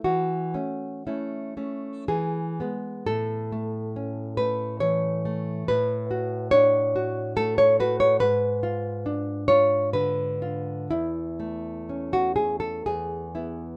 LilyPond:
\new Staff \with { instrumentName = "Nylon-string guitar" } { \time 3/4 \key a \major \tempo 4 = 66 << { fis'4 e'4 gis'4 | a'4. b'8 cis''4 | b'4 cis''4 a'16 cis''16 b'16 cis''16 | b'4. cis''8 b'4 |
e'4~ e'16 fis'16 gis'16 a'16 gis'4 | } \\ { e8 <a cis'>8 <a cis'>8 <a cis'>8 e8 <gis b>8 | a,8 a8 cis'8 a8 e8 a8 | a,8 fis'8 d'8 fis'8 a8 fis'8 | gis,8 eis'8 d'8 eis'8 d8 eis'8 |
e,8 a8 cis'8 a8 e,8 <b e'>8 | } >> }